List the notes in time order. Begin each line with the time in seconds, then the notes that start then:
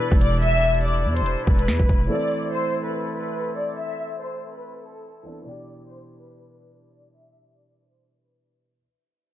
Already playing: B2 E3 G3 D4 E4 G4 A4 B4
0.12 E1, kick
0.21 D5, closed hi-hat
0.42 E5, closed hi-hat
0.74 closed hi-hat
0.81 D5, closed hi-hat
0.88 closed hi-hat
1.05 E2
1.16 C5, closed hi-hat
1.21 E1
1.26 closed hi-hat
1.47 E1 B4, kick
1.59 closed hi-hat
1.68 E2, snare
1.79 E1, kick
1.89 E1, kick, closed hi-hat
2.07 E3 A3 C4 A4 D5
2.12 C4 A4
2.52 C5
2.84 B4
3.15 B4
3.57 D5
3.78 E5
4.20 C5
4.52 B4
4.83 A4
5.23 E3 B3 C4 D4
5.42 B2 E3 G3 D4 E4 D5
5.47 D4 G4
5.88 C5
6.20 B4
6.51 B4
6.93 D5
7.14 E5
7.56 D5
7.88 C5
8.19 B4